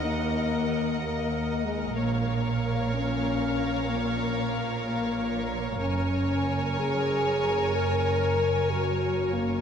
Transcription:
<<
  \new Staff \with { instrumentName = "Violin section" } { \time 6/8 \key bes \phrygian \tempo 4. = 62 ges''2. | f''2.~ | f''2. | aes''2.~ |
aes''2. | }
  \new Staff \with { instrumentName = "Violin section" } { \time 6/8 \key bes \phrygian ees''2. | des''2.~ | des''2. | des''2.~ |
des''2. | }
  \new Staff \with { instrumentName = "Viola section" } { \time 6/8 \key bes \phrygian bes'2. | bes'2.~ | bes'2. | bes'2.~ |
bes'2. | }
  \new Staff \with { instrumentName = "French horn section" } { \time 6/8 \key bes \phrygian bes4. bes4 aes8 | bes4. des'4. | bes4. bes4 r8 | des'4. aes'4. |
bes'4. ges'4 bes8 | }
  \new Staff \with { instrumentName = "Cello section" } { \clef bass \time 6/8 \key bes \phrygian ees,2. | bes,2.~ | bes,2. | ges,2.~ |
ges,2. | }
  \new Staff \with { instrumentName = "Double bass section" } { \clef bass \time 6/8 \key bes \phrygian ees,2. | bes,,2.~ | bes,,2. | ges,,2.~ |
ges,,2. | }
>>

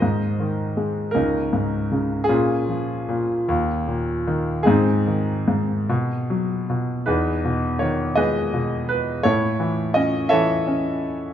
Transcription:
<<
  \new Staff \with { instrumentName = "Grand piano" } { \time 6/8 \key aes \major \tempo 4. = 53 << { ees''4. bes'4 r8 | aes'2. | aes'2 r4 | \key e \major b'4 cis''8 dis''4 b'8 |
cis''4 dis''8 e''4 r8 | } \\ { <bes' c''>4. <des' ees'>4. | <des' f'>2. | <c' ees'>2 r4 | <dis' gis'>4. <gis' b'>4. |
<e' a'>4. <a' cis''>4. | } >> }
  \new Staff \with { instrumentName = "Grand piano" } { \clef bass \time 6/8 \key aes \major aes,8 ees8 aes8 des,8 aes,8 des8 | bes,8 f8 bes,8 ees,8 bes,8 ees8 | aes,8 ees8 aes,8 b,8 fis8 b,8 | \key e \major e,8 b,8 dis8 gis8 b,4 |
a,8 e8 cis'8 e8 cis'4 | }
>>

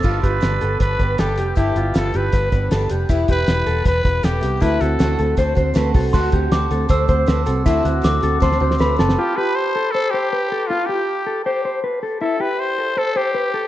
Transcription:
<<
  \new Staff \with { instrumentName = "Glockenspiel" } { \time 4/4 \key g \mixolydian \tempo 4 = 158 r1 | r1 | r1 | r1 |
c'''4 d'''4 e'''2~ | e'''4 d'''4 c'''4 b''8 a''8 | r1 | r1 |
r1 | }
  \new Staff \with { instrumentName = "Clean electric guitar" } { \time 4/4 \key g \mixolydian f'8 g'4 a'8 b'8 b'8 a'8 g'8 | e'8 f'4 g'8 b'8 b'8 a'8 g'8 | e'8 g'4 a'8 b'8 b'8 a'8 g'8 | e'8 fis'4 a'8 c''8 c''8 b'8 a'8 |
fis'8 g'4 a'8 c''8 c''8 b'8 a'8 | e'8 fis'4 a'8 c''8 c''8 b'8 a'8 | f'8 g'4 a'8 c''8 c''8 b'8 a'8 | f'8 g'4 a'8 c''8 c''8 b'8 a'8 |
e'8 g'4 a'8 c''8 c''8 b'8 a'8 | }
  \new Staff \with { instrumentName = "Trumpet" } { \time 4/4 \key g \mixolydian r8 b'4. b'4 g'4 | g'4 a'8 b'4. r4 | r8 b'4. b'4 g'4 | b'8 a'4. r2 |
r1 | r1 | g'8 b'8 c''4 a'8 g'4. | f'8 g'4. g'4 r4 |
a'8 b'8 c''4 a'8 g'4. | }
  \new Staff \with { instrumentName = "Twelve-string acoustic guitar" } { \time 4/4 \key g \mixolydian <g, d g b d'>8 <g b d'>8 <g, d g b d'>8 <g b d'>8 <d g b d'>8 <g b d'>8 <g, d g b d'>8 <g b d'>8 | <g, d g b d'>8 <g b d'>8 <g, d g b d'>8 <g b d'>8 <d g b d'>8 <g b d'>8 <g, d g b d'>8 <g b d'>8 | <e g b e'>8 <g b e'>8 <e g b e'>8 <g b e'>8 <e g b e'>8 <g b e'>8 <e g b e'>8 <g b e'>8 | <d a c' fis'>8 <a c' fis'>8 <d a c' fis'>8 <a c' fis'>8 <d a c' fis'>8 <a c' fis'>8 <d a c' fis'>8 <a c' fis'>8 |
<d a c' fis'>8 <a c' fis'>8 <d a c' fis'>8 <a c' fis'>8 <d a c' fis'>8 <a c' fis'>8 <d a c' fis'>8 <a c' fis'>8 | <d a c' fis'>8 <a c' fis'>8 <d a c' fis'>8 <a c' fis'>8 <d a c' fis'>8 <a c' fis'>8 <d a c' fis'>8 <a c' fis'>8 | r1 | r1 |
r1 | }
  \new Staff \with { instrumentName = "Fingered electric bass" } { \clef bass \time 4/4 \key g \mixolydian g,,8 g,,8 g,,8 g,,8 g,,8 g,,8 g,,8 f,,8 | g,,8 g,,8 g,,8 g,,8 g,,8 g,,8 g,,8 f,,8 | e,,8 e,,8 e,,8 e,,8 e,,8 e,,8 e,,8 c,8 | d,8 d,8 d,8 d,8 d,8 d,8 d,8 c,8 |
d,8 d,8 d,8 d,8 d,8 d,8 d,8 c,8 | d,8 d,8 d,8 d,8 d,8 d,8 d,8 fis,,8 | r1 | r1 |
r1 | }
  \new DrumStaff \with { instrumentName = "Drums" } \drummode { \time 4/4 <cymc bd>8 <hh bd>8 <hh sn>8 hh8 <hh bd>8 <hh bd>8 <hh sn>8 hh8 | <hh bd>8 hh8 <hh sn>8 hh8 <hh bd>8 <hh bd>8 <hh sn>8 hh8 | <hh bd>8 <hh bd>8 <hh sn>8 hh8 <hh bd>8 <hh bd>8 <hh sn>8 hh8 | <hh bd>8 hh8 <hh sn>8 hh8 <hh bd>8 <hh bd>8 <hh sn>8 <hho bd>8 |
<cymc bd>8 <hh bd>8 <hh sn>8 hh8 <hh bd>8 <hh bd>8 <hh sn>8 hh8 | <hh bd>8 hh8 <hh sn>8 hh8 <bd sn>16 sn8 sn16 sn8 sn16 sn16 | r4 r4 r4 r4 | r4 r4 r4 r4 |
r4 r4 r4 r4 | }
>>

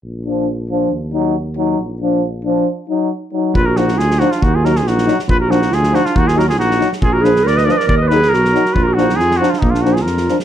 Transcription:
<<
  \new Staff \with { instrumentName = "Cornet" } { \time 2/4 \tempo 4 = 138 r2 | r2 | r2 | r2 |
ces''16 bes'16 ges'8 aes'8 ges'16 f'16 | ges'16 aes'16 bes'16 aes'16 ges'8. r16 | ces''16 bes'16 ges'8 aes'8 ges'16 f'16 | ges'16 aes'16 bes'16 aes'16 ges'8. r16 |
aes'16 bes'16 ces''8 d''16 ees''16 d''32 ees''32 d''16 | d''16 ees''16 ces''8 bes'4 | ces''16 bes'16 ges'8 aes'8 ges'16 f'16 | ees'16 f'16 ges'16 aes'16 bes'8. r16 | }
  \new Staff \with { instrumentName = "Clarinet" } { \time 2/4 r2 | r2 | r2 | r2 |
f'16 ges'16 ees'8 f'8 ees'16 d'16 | ees'16 f'16 ges'16 f'16 ees'8. r16 | f'16 ges'16 ees'8 f'8 ees'16 d'16 | ees'16 f'16 ges'16 f'16 ees'8. r16 |
f'16 ges'16 aes'8 bes'16 ces''16 bes'32 ces''32 bes'16 | bes'16 ces''16 aes'8 ges'4 | f'16 ges'16 ees'8 f'8 ees'16 d'16 | bes16 d'16 ees'16 f'16 f'8. r16 | }
  \new Staff \with { instrumentName = "Euphonium" } { \time 2/4 r8 d'8 r8 d'8 | r8 ees'8 r8 ees'8 | r8 d'8 r8 d'8 | r8 ees'8 r8 ees'8 |
r8 d'8 r8 d'8 | r8 ees'8 r8 ees'8 | r8 d'8 r8 d'8 | r8 ees'8 r8 ees'8 |
r8 d'8 r8 d'8 | r8 ees'8 r8 ees'8 | r8 d'8 r8 d'8 | r8 d'8 r8 d'8 | }
  \new Staff \with { instrumentName = "Euphonium" } { \clef bass \time 2/4 r8 f8 r8 f8 | r8 ges8 r8 ges8 | r8 f8 r8 f8 | r8 ges8 r8 ges8 |
r8 f8 r8 f8 | r8 ges8 r8 ges8 | r8 f8 r8 f8 | r8 ges8 r8 ges8 |
r8 f8 r8 f8 | r8 ges8 r8 ges8 | r8 f8 r8 f8 | r8 f8 r8 f8 | }
  \new Staff \with { instrumentName = "Tuba" } { \clef bass \time 2/4 bes,,2 | ees,2 | bes,,2 | r2 |
bes,,4 d,4 | ees,4 bes,,4 | bes,,4 d,4 | ees,4 bes,,4 |
bes,,4 d,4 | ees,4 ces,4 | bes,,4 f,4 | bes,,4 f,4 | }
  \new DrumStaff \with { instrumentName = "Drums" } \drummode { \time 2/4 r4 r4 | r4 r4 | r4 r4 | r4 r4 |
bd8 sn16 sn16 sn16 sn16 sn16 sn16 | bd8 sn16 sn16 sn16 sn16 sn16 sn16 | bd8 sn16 sn16 sn16 sn16 sn16 sn16 | bd16 sn16 sn16 sn16 sn16 sn16 sn16 sn16 |
bd8 sn16 sn16 sn16 sn16 sn16 sn16 | bd8 sn16 sn16 sn16 sn16 sn16 sn16 | bd8 sn16 sn16 sn16 sn16 sn16 sn16 | bd16 sn16 sn16 sn16 sn16 sn16 sn16 sn16 | }
>>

